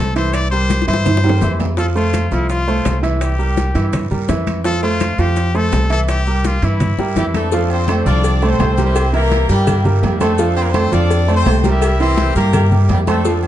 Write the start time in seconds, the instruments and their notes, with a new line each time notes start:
Already playing: upright bass C2, muted trumpet A4
0.16 grand piano E3 E4 E5, muted trumpet C5, high timbale, short guiro, maracas
0.33 muted trumpet D5, high bongo, high conga, high timbale, long guiro, claves, maracas
0.51 grand piano G3 G4 A#4, muted trumpet C5, high conga, maracas
0.70 high bongo, high conga, high timbale, short guiro, maracas
0.82 high bongo
0.87 upright bass G2, grand piano E3 E4 E5, muted trumpet C5, high conga, high timbale, short guiro, maracas
0.94 high bongo
1.05 high bongo, high conga, low conga, high timbale, long guiro, claves, maracas
1.17 high bongo
1.23 grand piano G3 G4 A#4, high conga, high timbale, maracas
1.29 low bongo
1.41 upright bass F2, grand piano E3 E4 E5, low bongo, high conga, low timbale, short guiro, maracas
1.60 high conga, low timbale, short guiro, claves, maracas
1.65 low bongo
1.77 grand piano F3 F4 F5, muted trumpet A4, high bongo, high conga, high timbale, long guiro, maracas
1.95 grand piano A3 A4 C5, muted trumpet F4, high bongo, high conga, maracas
2.13 high bongo, high conga, high timbale, short guiro, claves, maracas
2.31 upright bass C2, grand piano F3 F4 F5, muted trumpet E4, high bongo, high conga, short guiro, maracas
2.49 muted trumpet F4, high bongo, high conga, high timbale, long guiro, maracas
2.68 grand piano A3 A4 C5, high bongo, high conga, maracas
2.85 upright bass C2, high bongo, low bongo, high conga, high timbale, low timbale, short guiro, claves, maracas
3.03 grand piano E3 E4 E5, high conga, high timbale, short guiro, maracas
3.21 muted trumpet G4, high bongo, high conga, high timbale, long guiro, claves, maracas
3.39 grand piano G3 G4 A#4, high conga, maracas
3.57 high bongo, high conga, high timbale, short guiro, maracas
3.75 upright bass G2, grand piano E3 E4 E5, high bongo, high conga, high timbale, short guiro, maracas
3.93 high bongo, high conga, low conga, high timbale, long guiro, claves, maracas
4.10 upright bass G2, grand piano G3 G4 A#4, high bongo, high conga, low conga, maracas
4.28 upright bass F2, grand piano E3 E4 E5, high bongo, low bongo, high conga, high timbale, short guiro, maracas
4.47 high bongo, high conga, high timbale, short guiro, claves, maracas
4.64 grand piano F3 F4 F5, muted trumpet A4, high bongo, high conga, high timbale, long guiro, maracas
4.83 grand piano A3 A4 C5, muted trumpet F4, high bongo, high conga, maracas
5.00 high bongo, high conga, high timbale, short guiro, claves, maracas
5.18 upright bass F2, grand piano F3 F4 F5, muted trumpet G4, high bongo, short guiro, maracas
5.36 high bongo, high conga, high timbale, long guiro, maracas
5.55 grand piano A3 A4 C5, muted trumpet A4, high bongo, high conga, maracas
5.72 upright bass C2, high bongo, low bongo, high conga, high timbale, low timbale, short guiro, claves, maracas
5.90 grand piano E3 E4 E5, muted trumpet A4, high timbale, short guiro, maracas
6.08 muted trumpet G4, high bongo, high conga, high timbale, long guiro, claves, maracas
6.26 grand piano G3 G4 A#4, high conga, maracas
6.44 muted trumpet F4, high bongo, high conga, high timbale, short guiro, maracas
6.62 upright bass G2, grand piano E3 E4 E5, muted trumpet E4, high bongo, high conga, high timbale, short guiro, maracas
6.80 high bongo, high conga, low conga, high timbale, long guiro, claves, maracas
6.98 upright bass G2, grand piano G3 G4 A#4, high bongo, high conga, maracas
7.16 upright bass F2, grand piano E3 E4 E5, horn section G3 G4, high bongo, high conga, high timbale, short guiro, maracas
7.34 horn section A3 C4 D4 A4, low bongo, high conga, high timbale, short guiro, claves, maracas
7.52 grand piano F3 F4 F5, cowbell, long guiro, maracas
7.70 horn section C4 A4 C5, high conga, low agogo, maracas
7.88 grand piano A3 A4 C5, cowbell, high conga, low timbale, low agogo, short guiro, claves, maracas
8.06 upright bass C2, grand piano F3 F4 F5, horn section D4 A4 D5, short guiro, maracas
8.24 cowbell, high conga, low agogo, long guiro, maracas
8.42 grand piano A3 A4 C5, high conga, low agogo, maracas
8.48 horn section C4 A4 C5
8.59 upright bass C2, grand piano A3 A4 C5, cowbell, high conga, low timbale, low agogo, short guiro, claves, maracas
8.77 grand piano G3 G4 A#4, cowbell, high conga, short guiro, maracas
8.84 horn section C4 E4 G4 C5
8.95 cowbell, high conga, low agogo, long guiro, claves, maracas
9.13 grand piano E3 E4 E5, horn section A#3 E4 G4 A#4, high conga, low agogo, maracas
9.31 cowbell, high conga, low timbale, low agogo, short guiro, maracas
9.49 upright bass G2, grand piano G3 G4 A#4, horn section G3 A#3 E4 G4, cowbell, high conga, short guiro, maracas
9.67 cowbell, high conga, low conga, low agogo, long guiro, claves, maracas
9.85 grand piano G3 G4 A#4, high conga, low conga, maracas
10.03 upright bass F2, horn section G3 G4, cowbell, high conga, low timbale, low agogo, short guiro, maracas
10.20 horn section A3 C4 D4 A4, grand piano A3 A4 C5, cowbell, high conga, low agogo, short guiro, claves, maracas
10.38 grand piano F3 F4 F5, cowbell, high conga, long guiro, maracas
10.56 horn section C4 C5, high conga, low agogo, maracas
10.63 horn section A#3 A#4
10.70 horn section C4 C5
10.74 grand piano A3 A4 C5, cowbell, high conga, low timbale, low agogo, short guiro, claves, maracas
10.92 upright bass F2, grand piano F3 F4 F5, horn section D4 A4 D5, short guiro, maracas
11.10 cowbell, high conga, low agogo, long guiro, maracas
11.28 grand piano A3 A4 C5, high conga, low agogo, maracas
11.35 horn section C4 A4 C5
11.45 upright bass C2, grand piano A3 A4 C5, cowbell, high conga, low timbale, low agogo, short guiro, claves, maracas
11.64 grand piano G3 G4 A#4, cowbell, high conga, short guiro, maracas
11.70 horn section E4 G4 A#4 E5
11.82 cowbell, high conga, low agogo, long guiro, claves, maracas
12.00 grand piano E3 E4 E5, horn section C4 E4 G4 C5, high conga, low agogo, maracas
12.17 cowbell, high conga, low timbale, low agogo, short guiro, maracas
12.35 upright bass G2, grand piano G3 G4 A#4, horn section A#3 E4 G4 A#4, cowbell, high conga, short guiro, maracas
12.53 cowbell, high conga, low conga, low agogo, long guiro, claves, maracas
12.71 grand piano G3 G4 A#4, high conga, low conga, maracas
12.89 upright bass F2, horn section G3 G4, cowbell, high conga, low timbale, low agogo, short guiro, maracas
13.07 grand piano A3 A4 C5, horn section A3 C4 D4 A4, cowbell, high conga, low agogo, short guiro, claves, maracas
13.25 grand piano F3 F4 F5, cowbell, long guiro, maracas
13.43 high conga, low agogo, maracas